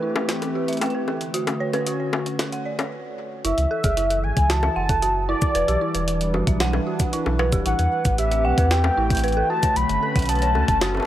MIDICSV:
0, 0, Header, 1, 6, 480
1, 0, Start_track
1, 0, Tempo, 526316
1, 1223, Time_signature, 4, 2, 24, 8
1, 10089, End_track
2, 0, Start_track
2, 0, Title_t, "Soft synth lead"
2, 0, Program_c, 0, 80
2, 3143, Note_on_c, 0, 76, 109
2, 3863, Note_on_c, 0, 80, 109
2, 3877, Note_off_c, 0, 76, 0
2, 4102, Note_on_c, 0, 81, 120
2, 4116, Note_off_c, 0, 80, 0
2, 4817, Note_off_c, 0, 81, 0
2, 4823, Note_on_c, 0, 74, 102
2, 6226, Note_off_c, 0, 74, 0
2, 6985, Note_on_c, 0, 78, 100
2, 7430, Note_off_c, 0, 78, 0
2, 7463, Note_on_c, 0, 76, 91
2, 7704, Note_on_c, 0, 78, 94
2, 7718, Note_off_c, 0, 76, 0
2, 7944, Note_on_c, 0, 79, 110
2, 7957, Note_off_c, 0, 78, 0
2, 8658, Note_off_c, 0, 79, 0
2, 8663, Note_on_c, 0, 81, 105
2, 8904, Note_on_c, 0, 83, 122
2, 8917, Note_off_c, 0, 81, 0
2, 9383, Note_on_c, 0, 81, 108
2, 9397, Note_off_c, 0, 83, 0
2, 10089, Note_off_c, 0, 81, 0
2, 10089, End_track
3, 0, Start_track
3, 0, Title_t, "Synth bell"
3, 0, Program_c, 1, 98
3, 0, Control_c, 1, 64, 127
3, 0, Note_on_c, 1, 64, 101
3, 0, Note_on_c, 1, 69, 96
3, 0, Note_on_c, 1, 71, 98
3, 23, Note_off_c, 1, 64, 0
3, 23, Note_on_c, 1, 64, 74
3, 137, Note_off_c, 1, 64, 0
3, 143, Note_off_c, 1, 71, 0
3, 143, Note_on_c, 1, 71, 76
3, 248, Note_off_c, 1, 71, 0
3, 504, Note_on_c, 1, 67, 74
3, 608, Note_off_c, 1, 67, 0
3, 623, Note_on_c, 1, 76, 75
3, 737, Note_off_c, 1, 76, 0
3, 742, Note_on_c, 1, 79, 102
3, 805, Note_off_c, 1, 79, 0
3, 863, Note_on_c, 1, 71, 76
3, 926, Note_off_c, 1, 71, 0
3, 982, Note_off_c, 1, 69, 0
3, 982, Note_on_c, 1, 69, 77
3, 995, Control_c, 1, 64, 0
3, 1097, Note_off_c, 1, 69, 0
3, 1181, Control_c, 1, 64, 127
3, 1222, Note_on_c, 1, 66, 102
3, 1327, Note_off_c, 1, 66, 0
3, 1462, Note_on_c, 1, 73, 99
3, 1568, Note_off_c, 1, 73, 0
3, 1582, Note_on_c, 1, 71, 98
3, 1687, Note_off_c, 1, 71, 0
3, 1702, Note_on_c, 1, 66, 78
3, 1816, Note_off_c, 1, 66, 0
3, 1822, Note_on_c, 1, 73, 74
3, 1927, Note_off_c, 1, 73, 0
3, 2183, Note_on_c, 1, 69, 83
3, 2288, Note_off_c, 1, 69, 0
3, 2302, Note_on_c, 1, 78, 75
3, 2417, Note_off_c, 1, 78, 0
3, 2421, Note_on_c, 1, 74, 75
3, 2536, Note_off_c, 1, 74, 0
3, 2542, Note_on_c, 1, 73, 72
3, 2656, Note_off_c, 1, 73, 0
3, 3143, Note_on_c, 1, 64, 100
3, 3154, Control_c, 1, 64, 0
3, 3248, Note_off_c, 1, 64, 0
3, 3330, Control_c, 1, 64, 127
3, 3382, Note_on_c, 1, 69, 104
3, 3487, Note_off_c, 1, 69, 0
3, 3502, Note_on_c, 1, 68, 101
3, 3608, Note_off_c, 1, 68, 0
3, 3622, Note_on_c, 1, 64, 82
3, 3736, Note_off_c, 1, 64, 0
3, 3742, Note_on_c, 1, 69, 76
3, 3847, Note_off_c, 1, 69, 0
3, 4101, Note_on_c, 1, 66, 86
3, 4207, Note_off_c, 1, 66, 0
3, 4222, Note_on_c, 1, 76, 78
3, 4336, Note_off_c, 1, 76, 0
3, 4342, Note_on_c, 1, 78, 103
3, 4405, Note_off_c, 1, 78, 0
3, 4463, Note_on_c, 1, 69, 78
3, 4526, Note_off_c, 1, 69, 0
3, 4582, Note_on_c, 1, 66, 85
3, 4696, Note_off_c, 1, 66, 0
3, 4823, Note_on_c, 1, 64, 104
3, 4928, Note_off_c, 1, 64, 0
3, 5062, Note_on_c, 1, 71, 104
3, 5076, Control_c, 1, 64, 0
3, 5168, Note_off_c, 1, 71, 0
3, 5181, Note_on_c, 1, 67, 99
3, 5243, Control_c, 1, 64, 127
3, 5287, Note_off_c, 1, 67, 0
3, 5302, Note_on_c, 1, 64, 80
3, 5416, Note_off_c, 1, 64, 0
3, 5422, Note_on_c, 1, 71, 75
3, 5527, Note_off_c, 1, 71, 0
3, 5782, Note_on_c, 1, 66, 77
3, 5887, Note_off_c, 1, 66, 0
3, 5902, Note_on_c, 1, 76, 79
3, 6017, Note_off_c, 1, 76, 0
3, 6021, Note_on_c, 1, 78, 106
3, 6085, Note_off_c, 1, 78, 0
3, 6143, Note_on_c, 1, 71, 77
3, 6206, Note_off_c, 1, 71, 0
3, 6263, Note_on_c, 1, 66, 78
3, 6377, Note_off_c, 1, 66, 0
3, 6502, Note_on_c, 1, 64, 102
3, 6608, Note_off_c, 1, 64, 0
3, 6743, Note_on_c, 1, 71, 105
3, 6848, Note_off_c, 1, 71, 0
3, 6863, Note_on_c, 1, 67, 102
3, 6968, Note_off_c, 1, 67, 0
3, 6983, Note_on_c, 1, 64, 88
3, 6996, Control_c, 1, 64, 0
3, 7097, Note_off_c, 1, 64, 0
3, 7104, Note_on_c, 1, 71, 76
3, 7159, Control_c, 1, 64, 127
3, 7209, Note_off_c, 1, 71, 0
3, 7464, Note_on_c, 1, 67, 82
3, 7569, Note_off_c, 1, 67, 0
3, 7584, Note_on_c, 1, 76, 74
3, 7697, Note_off_c, 1, 76, 0
3, 7703, Note_on_c, 1, 79, 105
3, 7766, Note_off_c, 1, 79, 0
3, 7824, Note_on_c, 1, 71, 78
3, 7886, Note_off_c, 1, 71, 0
3, 7944, Note_on_c, 1, 67, 87
3, 8057, Note_off_c, 1, 67, 0
3, 8184, Note_on_c, 1, 64, 101
3, 8289, Note_off_c, 1, 64, 0
3, 8424, Note_on_c, 1, 71, 106
3, 8529, Note_off_c, 1, 71, 0
3, 8544, Note_on_c, 1, 69, 106
3, 8648, Note_off_c, 1, 69, 0
3, 8664, Note_on_c, 1, 66, 81
3, 8675, Control_c, 1, 64, 0
3, 8778, Note_off_c, 1, 66, 0
3, 8784, Note_on_c, 1, 73, 77
3, 8841, Control_c, 1, 64, 127
3, 8889, Note_off_c, 1, 73, 0
3, 9144, Note_on_c, 1, 69, 78
3, 9248, Note_off_c, 1, 69, 0
3, 9264, Note_on_c, 1, 78, 77
3, 9378, Note_off_c, 1, 78, 0
3, 9384, Note_on_c, 1, 81, 100
3, 9446, Note_off_c, 1, 81, 0
3, 9503, Note_on_c, 1, 73, 76
3, 9566, Note_off_c, 1, 73, 0
3, 9623, Note_on_c, 1, 69, 79
3, 9737, Note_off_c, 1, 69, 0
3, 9863, Note_on_c, 1, 66, 104
3, 9968, Note_off_c, 1, 66, 0
3, 10089, End_track
4, 0, Start_track
4, 0, Title_t, "Analog synth pad"
4, 0, Program_c, 2, 89
4, 0, Note_on_c, 2, 52, 72
4, 0, Note_on_c, 2, 57, 88
4, 0, Note_on_c, 2, 60, 95
4, 0, Note_on_c, 2, 67, 91
4, 0, Note_on_c, 2, 71, 72
4, 982, Note_off_c, 2, 52, 0
4, 983, Note_off_c, 2, 60, 0
4, 983, Note_off_c, 2, 67, 0
4, 984, Note_on_c, 2, 50, 80
4, 1230, Note_on_c, 2, 66, 86
4, 1312, Note_on_c, 2, 61, 73
4, 2662, Note_off_c, 2, 61, 0
4, 2663, Note_off_c, 2, 50, 0
4, 2663, Note_off_c, 2, 66, 0
4, 2664, Note_off_c, 2, 57, 0
4, 2664, Note_off_c, 2, 71, 0
4, 3142, Note_on_c, 2, 52, 89
4, 5157, Note_on_c, 2, 55, 80
4, 5340, Note_on_c, 2, 71, 73
4, 5413, Note_on_c, 2, 62, 91
4, 6982, Note_off_c, 2, 55, 0
4, 7115, Note_on_c, 2, 57, 81
4, 7150, Note_on_c, 2, 60, 78
4, 7154, Note_on_c, 2, 67, 95
4, 7655, Note_off_c, 2, 62, 0
4, 8662, Note_off_c, 2, 52, 0
4, 8662, Note_off_c, 2, 60, 0
4, 8662, Note_off_c, 2, 67, 0
4, 8663, Note_on_c, 2, 50, 83
4, 8833, Note_on_c, 2, 61, 78
4, 9138, Note_on_c, 2, 66, 75
4, 10089, Note_off_c, 2, 50, 0
4, 10089, Note_off_c, 2, 57, 0
4, 10089, Note_off_c, 2, 61, 0
4, 10089, Note_off_c, 2, 66, 0
4, 10089, Note_off_c, 2, 71, 0
4, 10089, End_track
5, 0, Start_track
5, 0, Title_t, "Sub bass"
5, 0, Program_c, 3, 38
5, 3142, Note_on_c, 3, 30, 100
5, 3223, Note_off_c, 3, 30, 0
5, 3263, Note_on_c, 3, 37, 92
5, 3343, Note_off_c, 3, 37, 0
5, 3503, Note_on_c, 3, 30, 94
5, 3862, Note_on_c, 3, 33, 94
5, 3876, Note_off_c, 3, 30, 0
5, 3943, Note_off_c, 3, 33, 0
5, 3983, Note_on_c, 3, 37, 104
5, 4279, Note_off_c, 3, 37, 0
5, 4342, Note_on_c, 3, 30, 81
5, 4879, Note_off_c, 3, 30, 0
5, 5062, Note_on_c, 3, 28, 99
5, 5142, Note_off_c, 3, 28, 0
5, 5182, Note_on_c, 3, 35, 93
5, 5263, Note_off_c, 3, 35, 0
5, 5422, Note_on_c, 3, 28, 92
5, 5783, Note_on_c, 3, 31, 94
5, 5797, Note_off_c, 3, 28, 0
5, 5863, Note_off_c, 3, 31, 0
5, 5903, Note_on_c, 3, 35, 108
5, 6199, Note_off_c, 3, 35, 0
5, 6623, Note_on_c, 3, 35, 85
5, 6863, Note_on_c, 3, 26, 88
5, 6877, Note_off_c, 3, 35, 0
5, 6943, Note_off_c, 3, 26, 0
5, 6984, Note_on_c, 3, 33, 100
5, 7064, Note_off_c, 3, 33, 0
5, 7103, Note_on_c, 3, 40, 90
5, 7183, Note_off_c, 3, 40, 0
5, 7343, Note_on_c, 3, 33, 92
5, 7703, Note_on_c, 3, 36, 92
5, 7717, Note_off_c, 3, 33, 0
5, 7783, Note_off_c, 3, 36, 0
5, 7822, Note_on_c, 3, 40, 106
5, 8119, Note_off_c, 3, 40, 0
5, 8183, Note_on_c, 3, 33, 81
5, 8599, Note_off_c, 3, 33, 0
5, 8903, Note_on_c, 3, 35, 98
5, 8983, Note_off_c, 3, 35, 0
5, 9023, Note_on_c, 3, 30, 90
5, 9103, Note_off_c, 3, 30, 0
5, 9263, Note_on_c, 3, 35, 91
5, 9623, Note_on_c, 3, 38, 98
5, 9636, Note_off_c, 3, 35, 0
5, 9703, Note_off_c, 3, 38, 0
5, 9743, Note_on_c, 3, 30, 109
5, 10039, Note_off_c, 3, 30, 0
5, 10089, End_track
6, 0, Start_track
6, 0, Title_t, "Drums"
6, 143, Note_on_c, 9, 60, 78
6, 234, Note_off_c, 9, 60, 0
6, 262, Note_on_c, 9, 38, 106
6, 262, Note_on_c, 9, 42, 73
6, 353, Note_off_c, 9, 38, 0
6, 353, Note_off_c, 9, 42, 0
6, 383, Note_on_c, 9, 42, 49
6, 383, Note_on_c, 9, 60, 51
6, 475, Note_off_c, 9, 42, 0
6, 475, Note_off_c, 9, 60, 0
6, 622, Note_on_c, 9, 42, 33
6, 663, Note_off_c, 9, 42, 0
6, 663, Note_on_c, 9, 42, 28
6, 703, Note_off_c, 9, 42, 0
6, 703, Note_on_c, 9, 42, 23
6, 743, Note_off_c, 9, 42, 0
6, 743, Note_on_c, 9, 42, 73
6, 743, Note_on_c, 9, 60, 75
6, 783, Note_off_c, 9, 42, 0
6, 783, Note_on_c, 9, 42, 15
6, 822, Note_off_c, 9, 42, 0
6, 822, Note_on_c, 9, 42, 12
6, 834, Note_off_c, 9, 60, 0
6, 913, Note_off_c, 9, 42, 0
6, 982, Note_on_c, 9, 60, 53
6, 1074, Note_off_c, 9, 60, 0
6, 1102, Note_on_c, 9, 42, 36
6, 1193, Note_off_c, 9, 42, 0
6, 1222, Note_on_c, 9, 42, 78
6, 1313, Note_off_c, 9, 42, 0
6, 1342, Note_on_c, 9, 42, 52
6, 1342, Note_on_c, 9, 60, 78
6, 1434, Note_off_c, 9, 42, 0
6, 1434, Note_off_c, 9, 60, 0
6, 1582, Note_on_c, 9, 42, 37
6, 1582, Note_on_c, 9, 60, 53
6, 1673, Note_off_c, 9, 42, 0
6, 1673, Note_off_c, 9, 60, 0
6, 1701, Note_on_c, 9, 42, 79
6, 1792, Note_off_c, 9, 42, 0
6, 1942, Note_on_c, 9, 60, 82
6, 2033, Note_off_c, 9, 60, 0
6, 2062, Note_on_c, 9, 42, 37
6, 2153, Note_off_c, 9, 42, 0
6, 2181, Note_on_c, 9, 38, 110
6, 2181, Note_on_c, 9, 42, 77
6, 2181, Note_on_c, 9, 60, 53
6, 2273, Note_off_c, 9, 38, 0
6, 2273, Note_off_c, 9, 42, 0
6, 2273, Note_off_c, 9, 60, 0
6, 2302, Note_on_c, 9, 42, 51
6, 2393, Note_off_c, 9, 42, 0
6, 2542, Note_on_c, 9, 42, 37
6, 2542, Note_on_c, 9, 60, 80
6, 2634, Note_off_c, 9, 42, 0
6, 2634, Note_off_c, 9, 60, 0
6, 3143, Note_on_c, 9, 42, 68
6, 3234, Note_off_c, 9, 42, 0
6, 3263, Note_on_c, 9, 42, 38
6, 3354, Note_off_c, 9, 42, 0
6, 3503, Note_on_c, 9, 36, 122
6, 3503, Note_on_c, 9, 42, 56
6, 3503, Note_on_c, 9, 82, 59
6, 3594, Note_off_c, 9, 36, 0
6, 3594, Note_off_c, 9, 42, 0
6, 3594, Note_off_c, 9, 82, 0
6, 3622, Note_on_c, 9, 42, 69
6, 3713, Note_off_c, 9, 42, 0
6, 3743, Note_on_c, 9, 42, 39
6, 3835, Note_off_c, 9, 42, 0
6, 3983, Note_on_c, 9, 36, 106
6, 3983, Note_on_c, 9, 42, 57
6, 4074, Note_off_c, 9, 36, 0
6, 4074, Note_off_c, 9, 42, 0
6, 4102, Note_on_c, 9, 38, 118
6, 4102, Note_on_c, 9, 42, 68
6, 4194, Note_off_c, 9, 38, 0
6, 4194, Note_off_c, 9, 42, 0
6, 4221, Note_on_c, 9, 60, 83
6, 4312, Note_off_c, 9, 60, 0
6, 4462, Note_on_c, 9, 42, 56
6, 4463, Note_on_c, 9, 36, 118
6, 4553, Note_off_c, 9, 42, 0
6, 4554, Note_off_c, 9, 36, 0
6, 4582, Note_on_c, 9, 42, 68
6, 4673, Note_off_c, 9, 42, 0
6, 4942, Note_on_c, 9, 82, 79
6, 4943, Note_on_c, 9, 36, 126
6, 5033, Note_off_c, 9, 82, 0
6, 5034, Note_off_c, 9, 36, 0
6, 5061, Note_on_c, 9, 42, 69
6, 5153, Note_off_c, 9, 42, 0
6, 5183, Note_on_c, 9, 42, 39
6, 5274, Note_off_c, 9, 42, 0
6, 5423, Note_on_c, 9, 42, 57
6, 5514, Note_off_c, 9, 42, 0
6, 5543, Note_on_c, 9, 42, 71
6, 5634, Note_off_c, 9, 42, 0
6, 5662, Note_on_c, 9, 42, 39
6, 5753, Note_off_c, 9, 42, 0
6, 5782, Note_on_c, 9, 60, 39
6, 5873, Note_off_c, 9, 60, 0
6, 5902, Note_on_c, 9, 42, 56
6, 5903, Note_on_c, 9, 36, 124
6, 5993, Note_off_c, 9, 42, 0
6, 5994, Note_off_c, 9, 36, 0
6, 6021, Note_on_c, 9, 38, 124
6, 6021, Note_on_c, 9, 42, 68
6, 6113, Note_off_c, 9, 38, 0
6, 6113, Note_off_c, 9, 42, 0
6, 6141, Note_on_c, 9, 60, 77
6, 6233, Note_off_c, 9, 60, 0
6, 6382, Note_on_c, 9, 42, 57
6, 6382, Note_on_c, 9, 82, 78
6, 6383, Note_on_c, 9, 36, 121
6, 6473, Note_off_c, 9, 42, 0
6, 6473, Note_off_c, 9, 82, 0
6, 6474, Note_off_c, 9, 36, 0
6, 6502, Note_on_c, 9, 42, 69
6, 6593, Note_off_c, 9, 42, 0
6, 6622, Note_on_c, 9, 60, 62
6, 6713, Note_off_c, 9, 60, 0
6, 6743, Note_on_c, 9, 60, 61
6, 6834, Note_off_c, 9, 60, 0
6, 6863, Note_on_c, 9, 36, 112
6, 6863, Note_on_c, 9, 42, 58
6, 6863, Note_on_c, 9, 82, 78
6, 6954, Note_off_c, 9, 36, 0
6, 6954, Note_off_c, 9, 42, 0
6, 6954, Note_off_c, 9, 82, 0
6, 6983, Note_on_c, 9, 42, 69
6, 7074, Note_off_c, 9, 42, 0
6, 7103, Note_on_c, 9, 42, 37
6, 7195, Note_off_c, 9, 42, 0
6, 7343, Note_on_c, 9, 36, 127
6, 7343, Note_on_c, 9, 42, 54
6, 7343, Note_on_c, 9, 82, 61
6, 7434, Note_off_c, 9, 36, 0
6, 7435, Note_off_c, 9, 42, 0
6, 7435, Note_off_c, 9, 82, 0
6, 7463, Note_on_c, 9, 42, 68
6, 7555, Note_off_c, 9, 42, 0
6, 7583, Note_on_c, 9, 42, 39
6, 7674, Note_off_c, 9, 42, 0
6, 7823, Note_on_c, 9, 36, 126
6, 7823, Note_on_c, 9, 42, 54
6, 7914, Note_off_c, 9, 36, 0
6, 7914, Note_off_c, 9, 42, 0
6, 7943, Note_on_c, 9, 38, 126
6, 7943, Note_on_c, 9, 42, 67
6, 8034, Note_off_c, 9, 38, 0
6, 8034, Note_off_c, 9, 42, 0
6, 8062, Note_on_c, 9, 60, 77
6, 8154, Note_off_c, 9, 60, 0
6, 8303, Note_on_c, 9, 36, 108
6, 8303, Note_on_c, 9, 42, 53
6, 8343, Note_off_c, 9, 42, 0
6, 8343, Note_on_c, 9, 42, 45
6, 8363, Note_off_c, 9, 42, 0
6, 8363, Note_on_c, 9, 42, 68
6, 8383, Note_off_c, 9, 42, 0
6, 8383, Note_on_c, 9, 42, 37
6, 8394, Note_off_c, 9, 36, 0
6, 8423, Note_off_c, 9, 42, 0
6, 8423, Note_on_c, 9, 42, 28
6, 8463, Note_off_c, 9, 42, 0
6, 8463, Note_on_c, 9, 42, 23
6, 8504, Note_off_c, 9, 42, 0
6, 8504, Note_on_c, 9, 42, 19
6, 8595, Note_off_c, 9, 42, 0
6, 8783, Note_on_c, 9, 36, 127
6, 8783, Note_on_c, 9, 42, 58
6, 8783, Note_on_c, 9, 82, 80
6, 8874, Note_off_c, 9, 36, 0
6, 8874, Note_off_c, 9, 42, 0
6, 8874, Note_off_c, 9, 82, 0
6, 8903, Note_on_c, 9, 42, 64
6, 8994, Note_off_c, 9, 42, 0
6, 9023, Note_on_c, 9, 42, 35
6, 9114, Note_off_c, 9, 42, 0
6, 9263, Note_on_c, 9, 36, 127
6, 9263, Note_on_c, 9, 42, 51
6, 9293, Note_off_c, 9, 42, 0
6, 9293, Note_on_c, 9, 42, 41
6, 9323, Note_off_c, 9, 42, 0
6, 9323, Note_on_c, 9, 42, 34
6, 9353, Note_off_c, 9, 42, 0
6, 9353, Note_on_c, 9, 42, 28
6, 9354, Note_off_c, 9, 36, 0
6, 9383, Note_off_c, 9, 42, 0
6, 9383, Note_on_c, 9, 42, 67
6, 9412, Note_off_c, 9, 42, 0
6, 9412, Note_on_c, 9, 42, 18
6, 9443, Note_off_c, 9, 42, 0
6, 9443, Note_on_c, 9, 42, 16
6, 9472, Note_off_c, 9, 42, 0
6, 9472, Note_on_c, 9, 42, 13
6, 9503, Note_off_c, 9, 42, 0
6, 9503, Note_on_c, 9, 42, 36
6, 9594, Note_off_c, 9, 42, 0
6, 9623, Note_on_c, 9, 60, 35
6, 9715, Note_off_c, 9, 60, 0
6, 9742, Note_on_c, 9, 42, 53
6, 9743, Note_on_c, 9, 36, 113
6, 9833, Note_off_c, 9, 42, 0
6, 9834, Note_off_c, 9, 36, 0
6, 9863, Note_on_c, 9, 38, 123
6, 9863, Note_on_c, 9, 42, 68
6, 9954, Note_off_c, 9, 38, 0
6, 9954, Note_off_c, 9, 42, 0
6, 9983, Note_on_c, 9, 60, 35
6, 10006, Note_off_c, 9, 60, 0
6, 10006, Note_on_c, 9, 60, 41
6, 10030, Note_off_c, 9, 60, 0
6, 10030, Note_on_c, 9, 60, 49
6, 10055, Note_off_c, 9, 60, 0
6, 10055, Note_on_c, 9, 60, 56
6, 10089, Note_off_c, 9, 60, 0
6, 10089, End_track
0, 0, End_of_file